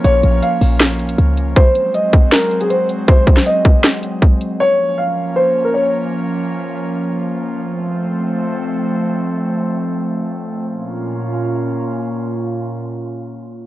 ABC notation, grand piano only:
X:1
M:4/4
L:1/16
Q:1/4=158
K:Bbm
V:1 name="Grand piano"
d4 f12 | c4 e4 B3 A c2 z2 | c4 e12 | d4 f4 c3 B d2 z2 |
z16 | z16 | z16 | z16 |
z16 |]